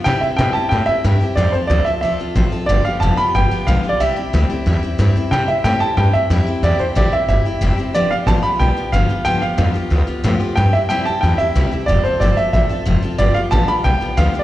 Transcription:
<<
  \new Staff \with { instrumentName = "Upright piano" } { \time 4/4 \key c \major \tempo 4 = 183 g''8 e''8 g''8 a''8 g''8 e''4 r8 | d''8 c''8 d''8 e''8 e''4. r8 | d''8 f''8 a''8 b''8 g''4 \tuplet 3/2 { f''4 d''8 } | e''2. r4 |
g''8 e''8 g''8 a''8 g''8 e''4 r8 | d''8 c''8 d''8 e''8 e''4. r8 | d''8 f''8 a''8 b''8 g''4 f''4 | g''8 f''8 f''2 r4 |
g''8 e''8 g''8 a''8 g''8 e''4 r8 | d''8 c''8 d''8 e''8 e''4. r8 | d''8 f''8 a''8 b''8 g''4 \tuplet 3/2 { f''4 d''8 } | }
  \new Staff \with { instrumentName = "Steel-string acoustic guitar" } { \time 4/4 \key c \major <c g c' e' g'>8 <c' e' g'>8 <c g c' e' g'>8 <c' e' g'>8 <g c' e' g'>8 <c' e' g'>8 <c g c' e' g'>8 <c' e' g'>8 | <f c' f' a'>8 <c' f' a'>8 <f c' f' a'>8 <c' f' a'>8 <f c' f' a'>8 <c' f' a'>8 <f c' f' a'>8 <c' f' a'>8 | <g, d f b f' g'>8 <f b f' g'>8 <g, d f b f' g'>8 <f b f' g'>8 <f b f' g'>8 <f b f' g'>8 <g, d f b f' g'>8 <f b f' g'>8 | <c g c' e' g'>8 <c' e' g'>8 <c g c' e' g'>8 <c' e' g'>8 <g c' e' g'>8 <c' e' g'>8 <c g c' e' g'>8 <c' e' g'>8 |
<c g c' e' g'>8 <c' e' g'>8 <c g c' e' g'>8 <c' e' g'>8 <g c' e' g'>8 <c' e' g'>8 <c g c' e' g'>8 <c' e' g'>8 | <c g c' e' g'>8 <c' e' g'>8 <c g c' e' g'>8 <c' e' g'>8 <g c' e' g'>8 <c' e' g'>8 <c g c' e' g'>8 <c' e' g'>8 | <g, d f b f' g'>8 <f b f' g'>8 <g, d f b f' g'>8 <f b f' g'>8 <f b f' g'>8 <f b f' g'>8 <g, d f b f' g'>8 <f b f' g'>8 | <g, d f b f' g'>8 <f b f' g'>8 <g, d f b f' g'>8 <f b f' g'>8 <f b f' g'>8 <f b f' g'>8 <g, d f b f' g'>8 <f b f' g'>8 |
<c g c' e' g'>8 <c' e' g'>8 <c g c' e' g'>8 <c' e' g'>8 <g c' e' g'>8 <c' e' g'>8 <c g c' e' g'>8 <c' e' g'>8 | <f c' f' a'>8 <c' f' a'>8 <f c' f' a'>8 <c' f' a'>8 <f c' f' a'>8 <c' f' a'>8 <f c' f' a'>8 <c' f' a'>8 | <g, d f b f' g'>8 <f b f' g'>8 <g, d f b f' g'>8 <f b f' g'>8 <f b f' g'>8 <f b f' g'>8 <g, d f b f' g'>8 <f b f' g'>8 | }
  \new Staff \with { instrumentName = "Upright bass" } { \clef bass \time 4/4 \key c \major c8 r8 b,8 r8 a,8 r8 g,8 r8 | f,8 r8 d,8 r8 c,8 r8 a,,8 r8 | g,,8 r8 f,,8 r8 g,,8 r8 b,,8 r8 | c,8 r8 d,8 r8 e,8 r8 g,8 r8 |
c8 r8 a,8 r8 g,8 r8 f,8 r8 | e,8 r8 a,,8 r8 g,,8 r8 f,,8 r8 | g,,8 r8 a,,8 r8 b,,8 r8 g,,8 r8 | g,8 r8 f,8 r8 d,8 r8 a,8 r8 |
g,8 r8 f,8 r8 e,8 r8 c,8 r8 | f,,8 r8 g,,8 r8 a,,8 r8 f,,8 r8 | g,,8 r8 a,,8 r8 b,,8 r8 d,8 r8 | }
>>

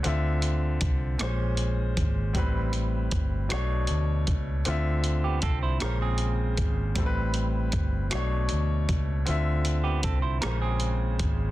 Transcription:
<<
  \new Staff \with { instrumentName = "Clean electric guitar" } { \time 6/8 \key d \dorian \tempo 4. = 52 r2. | r2. | r8. <b g'>16 <c' a'>16 <e' c''>16 <des' bes'>16 <c' aes'>4~ <c' aes'>16 | r2. |
r8. <b g'>16 <c' a'>16 <e' c''>16 <des' bes'>16 <c' aes'>4~ <c' aes'>16 | }
  \new Staff \with { instrumentName = "Grand piano" } { \time 6/8 \key d \dorian <d c' f' e''>4. <bes, aes des' c''>4. | <a, g c' b'>4. <b, a d' cis''>4. | <d c' f' e''>4. <bes, des aes c''>4. | <a, g c' a' b'>4. <b, a d' cis''>4. |
<d c' f' e''>4. <bes, des aes c''>4. | }
  \new Staff \with { instrumentName = "Fingered electric bass" } { \clef bass \time 6/8 \key d \dorian d,4 c,8 bes,,4 aes,,8 | a,,4 g,,8 b,,8 d,8 cis,8 | d,4 c,8 bes,,4 aes,,8 | a,,4 g,,8 b,,8 d,8 cis,8 |
d,4 c,8 bes,,4 aes,,8 | }
  \new DrumStaff \with { instrumentName = "Drums" } \drummode { \time 6/8 hh8 hh8 <hh bd>8 <hh ss>8 hh8 <hh bd>8 | <hh bd>8 hh8 <hh bd>8 <hh ss>8 hh8 <hh bd>8 | hh8 hh8 <hh bd>8 <hh ss>8 hh8 <hh bd>8 | <hh bd>8 hh8 <hh bd>8 <hh ss>8 hh8 <hh bd>8 |
hh8 hh8 <hh bd>8 <hh ss>8 hh8 <hh bd>8 | }
>>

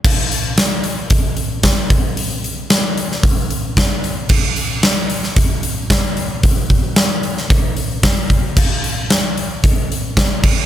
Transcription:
\new DrumStaff \with { instrumentName = "Drums" } \drummode { \time 4/4 \tempo 4 = 113 <cymc bd>8 hho8 <hho sn>8 hho8 <hho bd>8 hho8 <hho bd sn>8 <hho bd>8 | hho8 hho8 <hho sn>8 hho16 sn16 <hho bd>8 hho8 <hho bd sn>8 hho8 | <cymc bd>8 hho8 <hho sn>8 hho16 sn16 <hho bd>8 hho8 <hho bd sn>8 hho8 | <hho bd>8 <hho bd>8 <hho sn>8 hho16 sn16 <hho bd>8 hho8 <hho bd sn>8 <hho bd>8 |
<cymc bd>8 hho8 <hho sn>8 hho8 <hho bd>8 hho8 <hho bd sn>8 <cymc bd>8 | }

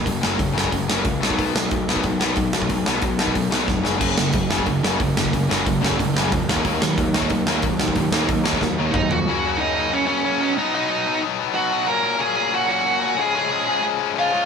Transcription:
<<
  \new Staff \with { instrumentName = "Lead electric guitar" } { \time 4/4 \key fis \major \tempo 4 = 183 r1 | r1 | r1 | r1 |
r1 | r1 | r2. <dis' dis''>8 <fis' fis''>8~ | <fis' fis''>4 <dis' dis''>4 <cis' cis''>8 <cis' cis''>4. |
<dis' dis''>8 <dis' dis''>4. r4 <fis' fis''>4 | <ais' ais''>4 <gis' gis''>4 <fis' fis''>8 <fis' fis''>4. | <gis' gis''>8 <gis' gis''>4. r4 <eis' eis''>4 | }
  \new Staff \with { instrumentName = "Distorted electric guitar" } { \clef bass \time 4/4 \key fis \major <fis, cis>8 <fis, cis fis>8 <fis, cis>8 <fis, cis fis>8 <fis, cis>8 <fis, cis fis>8 <fis, cis>8 <b, fis b>8 | <b, fis b>8 <b, fis>8 <b, fis>8 <b, fis b>8 <b, fis>8 <b, fis b>8 <b, fis>8 <b, fis>8 | <b, fis>8 <b, fis b>8 <b, fis>8 <b, fis b>8 <b, fis>8 <b, fis b>8 <b, fis>8 <fis, cis fis>8 | <fis, cis fis>8 <fis, cis>8 <fis, cis>8 <fis, cis fis>8 <fis, cis>8 <fis, cis fis>8 <fis, cis>8 <fis, cis>8 |
<fis, cis>8 <fis, cis fis>8 <fis, cis>8 <fis, cis fis>8 <fis, cis>8 <fis, cis fis>8 <fis, cis>8 <dis fis ais>8 | <dis fis ais>8 <dis fis>8 <dis fis>8 <dis fis ais>8 <dis fis>8 <dis fis ais>8 <dis fis>8 <dis fis>8 | <dis fis>8 <dis fis ais>8 <dis fis>8 <dis fis ais>8 <dis fis>8 <dis fis ais>8 <dis fis>8 <dis fis>8 | <fis, cis fis ais cis'>8 <fis, cis fis ais cis'>8 <fis, cis fis ais cis'>8 <fis, cis fis ais cis'>8 <fis, cis fis ais cis'>8 <fis, cis fis ais cis'>8 <fis, cis fis ais cis'>8 <b, fis b dis'>8 |
<b, fis b dis'>8 <b, fis b dis'>8 <b, fis b dis'>8 <b, fis b dis'>8 <b, fis b dis'>8 <b, fis b dis'>8 <b, fis b dis'>8 <b, fis b dis'>8 | <ais, fis ais cis'>8 <ais, fis ais cis'>8 <ais, fis ais cis'>8 <ais, fis ais cis'>8 <ais, fis ais cis'>8 <ais, fis ais cis'>8 <ais, fis ais cis'>8 <ais, fis ais cis'>8 | <cis eis gis cis'>8 <cis eis gis cis'>8 <cis eis gis cis'>8 <cis eis gis cis'>8 <cis eis gis cis'>8 <cis eis gis cis'>8 <cis eis gis cis'>8 <cis eis gis cis'>8 | }
  \new Staff \with { instrumentName = "Distorted electric guitar" } { \clef bass \time 4/4 \key fis \major r1 | r1 | r1 | <fis, cis fis>8 <fis, cis>8 <fis, cis>8 <fis, cis fis>8 <fis, cis>8 <fis, cis fis>8 <fis, cis>8 <fis, cis>8 |
<fis, cis>8 <fis, cis fis>8 <fis, cis>8 <fis, cis fis>8 <fis, cis>8 <fis, cis fis>8 <fis, cis>8 <dis ais dis'>8 | <dis ais dis'>8 <dis ais>8 <dis ais>8 <dis ais dis'>8 <dis ais>8 <dis ais dis'>8 <dis ais>8 <dis ais>8 | <dis ais>8 <dis ais dis'>8 <dis ais>8 <dis ais dis'>8 <dis ais>8 <dis ais dis'>8 <dis ais>8 <dis ais>8 | r1 |
r1 | r1 | r1 | }
  \new Staff \with { instrumentName = "Picked electric bass" } { \clef bass \time 4/4 \key fis \major fis,,8 fis,,8 fis,,8 fis,,8 fis,,8 fis,,8 cis,8 b,,8 | b,,8 b,,8 b,,8 b,,8 b,,8 b,,8 b,,8 b,,8 | b,,8 b,,8 b,,8 b,,8 b,,8 b,,8 eis,,8 fis,,8 | fis,,8 fis,,8 fis,,8 fis,,8 fis,,8 fis,,8 fis,,8 fis,,8 |
fis,,8 fis,,8 fis,,8 fis,,8 fis,,8 fis,,8 eis,8 dis,8 | dis,8 dis,8 dis,8 dis,8 dis,8 dis,8 dis,8 dis,8 | dis,8 dis,8 dis,8 dis,8 dis,8 dis,8 dis,8 eis,8 | r1 |
r1 | r1 | r1 | }
  \new DrumStaff \with { instrumentName = "Drums" } \drummode { \time 4/4 <hho bd>8 sn8 <hho bd>8 sn16 bd16 <hho bd>8 sn8 <hho bd>8 sn16 bd16 | <hho bd>8 sn8 <hho bd>8 sn16 bd16 <hho bd>8 sn8 <hho bd>8 sn16 bd16 | <hho bd>8 sn8 <hho bd>8 sn16 bd16 <hho bd>8 sn8 <bd sn>8 sn8 | <cymc bd>8 sn8 <hho bd>8 sn16 bd16 <hho bd>8 sn8 <hho bd>8 sn16 bd16 |
<hho bd>8 sn8 <hho bd>8 sn16 bd16 <hho bd>8 sn8 <hho bd>8 sn16 bd16 | <hho bd>8 sn8 <hho bd>8 sn16 bd16 <hho bd>8 sn8 <hho bd>8 sn16 bd16 | <hho bd>8 sn8 <hho bd>8 sn16 bd16 <bd sn>4 <bd toml>8 tomfh8 | r4 r4 r4 r4 |
r4 r4 r4 r4 | r4 r4 r4 r4 | r4 r4 r4 r4 | }
>>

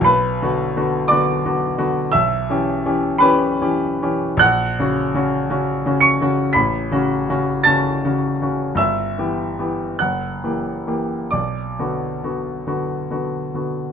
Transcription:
<<
  \new Staff \with { instrumentName = "Grand piano" } { \time 4/4 \key b \minor \tempo 4 = 53 <b' b''>4 <d'' d'''>4 <e'' e'''>4 <b' b''>4 | <fis'' fis'''>4. <cis''' cis''''>8 <b'' b'''>4 <a'' a'''>4 | <e'' e'''>4 <fis'' fis'''>4 <d'' d'''>4. r8 | }
  \new Staff \with { instrumentName = "Grand piano" } { \time 4/4 \key b \minor \tuplet 3/2 { b,,8 <d b fis'>8 <d b fis'>8 <d b fis'>8 <d b fis'>8 <d b fis'>8 b,,8 <e cis' g'>8 <e cis' g'>8 <e cis' g'>8 <e cis' g'>8 <e cis' g'>8 } | \tuplet 3/2 { ais,,8 <cis cis' fis'>8 <cis cis' fis'>8 <cis cis' fis'>8 <cis cis' fis'>8 <cis cis' fis'>8 a,,8 <cis cis' fis'>8 <cis cis' fis'>8 <cis cis' fis'>8 <cis cis' fis'>8 <cis cis' fis'>8 } | \tuplet 3/2 { g,,8 <e b g'>8 <e b g'>8 fis,,8 <e ais g'>8 <e ais g'>8 b,,8 <d b fis'>8 <d b fis'>8 <d b fis'>8 <d b fis'>8 <d b fis'>8 } | }
>>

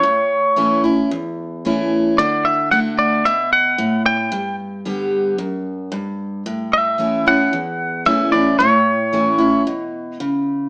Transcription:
<<
  \new Staff \with { instrumentName = "Clean electric guitar" } { \time 4/4 \key a \mixolydian \tempo 4 = 112 cis''4. r2 r8 | d''8 e''8 fis''8 d''8 e''8 fis''4 g''8~ | g''8 r2. r8 | r8 e''4 fis''4. e''8 d''8 |
cis''2 r2 | }
  \new Staff \with { instrumentName = "Steel-string acoustic guitar" } { \time 4/4 \key a \mixolydian << { r4 <e a cis' e'>8 <cis' e'>8 r4 <e a cis' e'>4 | r4 <d a d' fis'>4 r2 | r4 <d g b g'>4 r2 | r4 <e a cis' e'>8 <cis' e'>8 r4 <e a cis' e'>8 <cis' e'>8 |
r4 <e a cis' e'>8 <cis' e'>8 r2 | } \\ { a,2 e,2 | d2 b,4 a,4 | g,2 fis,4 g,4 | a,2 e,2 |
a,2 b,4 cis4 | } >> }
>>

